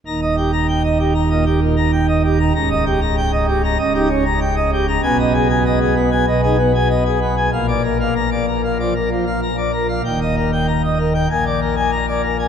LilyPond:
<<
  \new Staff \with { instrumentName = "Pipe organ" } { \time 4/4 \key bes \mixolydian \tempo 4 = 96 bes''16 ees''16 g'16 bes''16 g''16 ees''16 g'16 bes''16 ees''16 g'16 bes,16 bes''16 g''16 ees''16 g'16 bes''16 | bes''16 ees''16 g'16 bes''16 g''16 ees''16 g'16 bes''16 ees''16 g'16 des'16 bes''16 g''16 ees''16 g'16 bes''16 | aes''16 ees''16 aes'16 aes''16 ees''16 aes'16 ces'16 aes''16 ees''16 aes'16 ces'16 aes''16 ees''16 aes'16 ces'16 aes''16 | f''16 d''16 bes'16 f''16 bes''16 d''16 bes'16 f''16 d''16 bes'16 f16 f''16 bes''16 d''16 bes'16 f''16 |
g''16 ees''16 bes'16 g''16 bes''16 ees''16 bes'16 g''16 aes''16 d''16 bes'16 aes''16 bes''16 d''16 bes'16 aes''16 | }
  \new Staff \with { instrumentName = "Pipe organ" } { \clef bass \time 4/4 \key bes \mixolydian << { ees,2 bes,16 r4. r16 | des,2 des,16 ees'16 r4. | ces2 ces16 ees'16 r4. | bes,2 f16 r4. r16 |
ees,2 bes,2 | } \\ { ees,,1 | des,,2 des,,2 | ces,2 ces,2 | bes,,1 |
ees,,2 bes,,2 | } >> }
>>